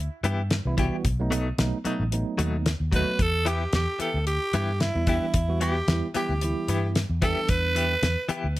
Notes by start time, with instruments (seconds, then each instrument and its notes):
0.23 fingered electric bass G2, clean electric guitar E3 B3 E4 G4, closed hi-hat
0.51 snare, closed hi-hat
0.65 fingered electric bass C2, tine electric piano E3 G3 B3 E4
0.77 tine electric piano E3 G3 B3 F#4, clean electric guitar E3 B3 E4 G4, kick, closed hi-hat
1.04 fingered electric bass B1, kick, closed hi-hat
1.19 tine electric piano F#3 A3 B3 D#4
1.31 clean electric guitar B2 F#3 A3 D#4, closed hi-hat
1.58 fingered electric bass B1, tine electric piano F#3 A3 B3 D#4, snare, closed hi-hat
1.85 clean electric guitar B2 F#3 A3 D#4, tine electric piano F#3 A3 B3 D#4, muted fingered electric bass stroke, closed hi-hat
2.00 fingered electric bass A1
2.12 tine electric piano F#3 A3 B3 D#4, closed hi-hat
2.38 fingered electric bass D#2, clean electric guitar B2 F#3 A3 D#4, closed hi-hat
2.66 snare, closed hi-hat
2.80 fingered electric bass D#2
2.92 clean electric guitar B2 F#3 A3 D#4, tine electric piano F#3 A3 B3 F#4, tenor saxophone B4, kick, closed hi-hat
3.19 fingered electric bass E2, tenor saxophone A4, kick, closed hi-hat
3.45 clean electric guitar E3 B3 E4 G4, tenor saxophone G4, closed hi-hat
3.73 fingered electric bass E2, tenor saxophone G4, snare, closed hi-hat
3.99 clean electric guitar E3 B3 E4 G4, tenor saxophone A4, muted fingered electric bass stroke, closed hi-hat
4.14 fingered electric bass D2
4.27 tenor saxophone G4, closed hi-hat
4.53 fingered electric bass G2, clean electric guitar E3 B3 E4 G4, closed hi-hat
4.80 tenor saxophone E4, snare, closed hi-hat
4.95 fingered electric bass E2, tine electric piano E3 G3 B3 E4
5.07 clean electric guitar E3 B3 E4 G4, tine electric piano E3 G3 B3 D4, tenor saxophone E4, kick, closed hi-hat
5.34 fingered electric bass E2, kick, closed hi-hat
5.48 tine electric piano E3 G3 B3 F#4
5.61 clean electric guitar E3 B3 E4 G4, tenor saxophone G4, closed hi-hat
5.88 fingered electric bass E2, tine electric piano E3 G3 B3 E4, snare, closed hi-hat
6.14 clean electric guitar E3 B3 E4 G4, tine electric piano E3 G3 B3 E4, tenor saxophone G4, muted fingered electric bass stroke, closed hi-hat
6.29 fingered electric bass D2
6.41 tine electric piano E3 G3 B3 E4, closed hi-hat
6.68 fingered electric bass G2, clean electric guitar E3 B3 E4 G4, closed hi-hat
6.95 snare, closed hi-hat
7.10 fingered electric bass E2
7.21 tine electric piano E3 G3 B3 D4, clean electric guitar E3 B3 E4 G4, tenor saxophone A4, kick, closed hi-hat
7.49 fingered electric bass E2, tenor saxophone B4, kick, closed hi-hat
7.76 clean electric guitar E3 B3 E4 G4, closed hi-hat
8.02 fingered electric bass E2, snare, closed hi-hat
8.29 clean electric guitar E3 B3 E4 G4, muted fingered electric bass stroke, closed hi-hat
8.44 fingered electric bass D2
8.57 closed hi-hat